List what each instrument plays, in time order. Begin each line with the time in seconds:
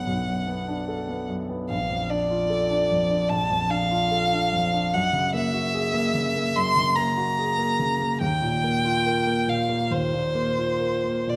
Already playing: grand piano B1 F#2 B3 D4 A4, violin F#5
0.07 grand piano B1
0.27 grand piano F#2
0.47 grand piano B3
0.68 grand piano D4
0.88 grand piano A4
1.09 grand piano B3
1.29 grand piano F#2
1.49 grand piano B3
1.70 grand piano A#1, violin F5
1.90 grand piano F2
2.10 grand piano D4, violin D5
2.30 grand piano F4
2.50 grand piano A4
2.70 grand piano D4
2.91 grand piano F2
3.11 grand piano D4
3.30 grand piano A#1, violin A5
3.50 grand piano F2
3.70 grand piano D4, violin F5
3.91 grand piano F4
4.11 grand piano A4
4.33 grand piano D4
4.53 grand piano F2
4.73 grand piano D4
4.93 grand piano F#2, violin F#5
5.13 grand piano C#3
5.34 grand piano A#3, violin E5
5.53 grand piano F#4
5.74 grand piano G#4
5.94 grand piano A#3
6.14 grand piano C#3
6.36 grand piano A#3
6.56 grand piano F#2, violin C6
6.76 grand piano C#3
6.96 grand piano A#3, violin A#5
7.17 grand piano F#4
7.39 grand piano G#4
7.58 grand piano A#3
7.79 grand piano C#3
8.00 grand piano A#3
8.21 grand piano D#2, violin G5
8.42 grand piano A#2
8.64 grand piano A#3
8.85 grand piano F4
9.06 grand piano A#4
9.27 grand piano A#3
9.48 grand piano A#2, violin F5
9.69 grand piano A#3
9.91 grand piano D#2, violin C5
10.13 grand piano A#2
10.35 grand piano A#3
10.57 grand piano F4
10.80 grand piano A#4
11.04 grand piano A#3
11.27 grand piano A#2, violin D5